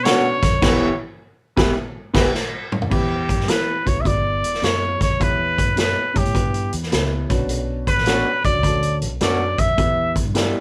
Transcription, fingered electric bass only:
0.00 0.36 B2 medium
0.43 0.60 F2 medium
0.62 0.88 E1 loud
1.57 1.71 E1 loud
2.15 2.28 E1 medium
2.91 3.33 E2 loud
3.38 3.48 G2 medium
3.48 3.82 E3 medium
3.87 4.04 B1 medium
4.05 4.44 G1 medium
4.44 4.61 E1 medium
4.63 4.96 F#2 medium
5.01 5.18 F2 medium
5.21 5.62 E2 loud
5.67 5.93 F#2 medium
6.16 6.24 G2 medium
6.25 6.34 A2 medium
6.35 6.68 G2 medium
6.73 6.90 E2 medium
6.93 7.26 C#2 medium
7.30 7.89 B1 medium
7.97 8.22 A1 medium
8.45 8.53 B1 medium
8.55 8.63 C#2 medium
8.63 9.04 D2 medium
9.02 9.19 B1 medium
9.21 9.54 F#2 medium
9.59 9.76 F2 medium
9.78 10.20 E2 loud
10.26 10.51 G2 medium

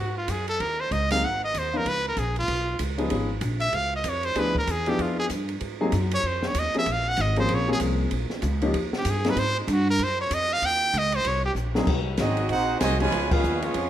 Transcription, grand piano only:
1.11 1.22 F#3 medium
1.11 1.22 A#3 medium
1.11 1.22 C4 medium
1.11 1.22 D#4 medium
1.11 1.22 G#4 medium
1.73 1.85 F3 medium
1.73 1.84 B3 medium
1.73 1.84 C#4 medium
1.73 1.85 D#4 medium
1.73 1.84 F4 medium
2.98 3.09 F3 medium
2.98 3.08 B3 medium
2.98 3.08 C#4 medium
2.98 3.09 D#4 medium
2.98 3.09 G#4 medium
3.10 3.28 F3 medium
3.10 3.28 B3 medium
3.10 3.28 C#4 medium
3.10 3.28 D#4 soft
3.10 3.28 G#4 medium
4.36 4.53 F3 medium
4.36 4.53 B3 medium
4.36 4.53 D4 medium
4.36 4.53 E4 medium
4.36 4.53 G#4 medium
4.87 5.28 F3 medium
4.87 5.28 B3 medium
4.87 5.28 D4 medium
4.87 5.28 E4 medium
4.87 5.28 G#4 medium
5.81 5.92 F#3 medium
5.81 5.92 A#3 medium
5.81 5.92 C4 medium
5.81 5.91 D#4 medium
5.81 5.91 G#4 loud
6.74 6.85 F3 medium
6.74 6.85 A#3 medium
6.74 6.85 C4 medium
6.74 6.85 C#4 medium
6.74 6.86 G#4 medium
7.37 7.66 F3 medium
7.37 7.66 A#3 medium
7.37 7.66 C4 medium
7.37 7.66 C#4 medium
7.37 7.66 G#4 medium
7.68 8.09 F3 medium
7.68 8.09 A#3 medium
7.68 8.09 C4 medium
7.68 8.09 C#4 medium
7.68 8.09 G#4 medium
8.62 8.73 F3 medium
8.62 8.73 A#3 medium
8.62 8.73 C#4 medium
8.62 8.73 D#4 medium
8.62 8.73 G4 medium
9.25 9.35 F#3 medium
9.25 9.36 A#3 medium
9.25 9.36 C4 medium
9.25 9.36 D#4 medium
9.25 9.36 G#4 medium
11.75 11.86 F#3 medium
11.75 11.86 A#3 medium
11.75 11.86 C4 medium
11.75 11.86 D#4 medium
11.75 11.86 G#4 medium
13.01 13.11 F3 medium
13.01 13.11 B3 medium
13.01 13.11 C#4 medium
13.01 13.11 D#4 medium
13.01 13.11 G#4 medium

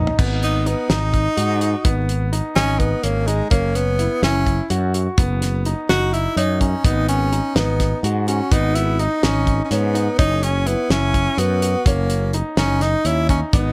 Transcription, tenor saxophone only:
0.43 0.69 D#4 medium
0.67 0.92 B3 medium
0.90 2.09 D#4 medium
2.56 2.80 C#4 loud
2.79 3.04 B3 medium
3.02 3.28 A#3 medium
3.27 3.50 G#3 medium
3.50 3.77 A#3 medium
3.75 4.23 B3 loud
4.24 4.67 C#4 medium
5.89 6.15 F#4 loud
6.13 6.37 E4 loud
6.37 6.62 D#4 medium
6.61 6.86 C#4 medium
6.85 7.08 D#4 medium
7.09 7.57 C#4 medium
7.55 8.03 B3 medium
8.28 8.54 C#4 medium
8.52 8.77 D#4 loud
8.75 9.01 E4 medium
9.00 9.25 D#4 medium
9.23 9.64 C#4 loud
9.65 9.73 C#4 medium
9.71 10.18 B3 medium
10.19 10.45 D#4 loud
10.43 10.68 C#4 medium
10.67 10.92 B3 medium
10.91 11.40 C#4 loud
11.39 11.87 B3 medium
11.86 12.33 A#3 medium
12.58 12.84 C#4 loud
12.82 13.08 D#4 medium
13.06 13.29 E4 medium
13.30 13.40 C#4 medium
13.54 13.72 D#4 medium

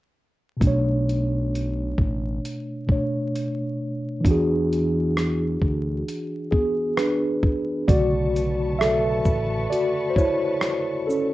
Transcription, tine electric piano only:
0.57 2.82 B2 medium
0.57 2.84 A3 medium
0.64 2.86 D4 medium
0.64 2.88 C#5 medium
2.87 4.24 B2 medium
2.87 4.25 A3 soft
2.87 4.23 D4 soft
2.92 4.27 C#5 medium
4.21 7.82 E3 medium
4.21 6.98 D4 medium
4.27 7.86 F#4 medium
4.27 6.50 G#4 medium
6.51 6.96 B3 medium
6.51 6.99 G#4 medium
6.97 7.86 D4 medium
6.97 7.84 B4 medium
7.88 8.54 C#3 medium
7.88 8.53 D3 medium
7.88 8.54 A3 medium
7.88 8.76 F#4 medium
7.88 8.75 D5 loud
8.79 9.67 A4 medium
8.79 9.66 E5 loud
9.70 10.09 F#4 medium
9.70 10.12 D5 medium
10.10 10.16 C5 medium
10.16 11.04 E4 medium
10.16 11.10 C#5 loud
11.07 11.34 C#4 medium
11.07 11.34 A4 medium

